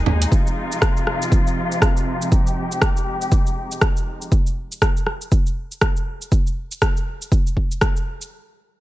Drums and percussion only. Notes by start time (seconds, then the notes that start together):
0.06 muted conga, low conga
0.22 closed hi-hat, cabasa
0.32 kick, cabasa
0.47 cabasa
0.72 cabasa
0.82 kick, cross-stick, cabasa
0.97 cabasa
1.07 cross-stick
1.22 cabasa
1.32 kick, cabasa
1.47 cabasa
1.72 cabasa
1.82 kick, cross-stick, cabasa
1.97 cabasa
2.22 cabasa
2.32 kick, cabasa
2.47 cabasa
2.72 cabasa
2.82 kick, cross-stick, cabasa
2.97 cabasa
3.21 cabasa
3.32 kick, cabasa
3.47 cabasa
3.72 cabasa
3.81 kick, cross-stick, cabasa
3.97 cabasa
4.22 cabasa
4.32 kick, cabasa
4.47 cabasa
4.72 cabasa
4.82 kick, cross-stick, cabasa
4.97 cabasa
5.07 cross-stick
5.21 cabasa
5.32 kick, cabasa
5.46 cabasa
5.72 cabasa
5.81 kick, cross-stick, cabasa
5.97 cabasa
6.22 cabasa
6.32 kick, cabasa
6.47 cabasa
6.71 cabasa
6.82 kick, cross-stick, cabasa
6.97 cabasa
7.22 cabasa
7.32 kick, cabasa
7.47 cabasa
7.57 kick
7.72 cabasa
7.81 kick, cross-stick, cabasa
7.96 cabasa
8.21 cabasa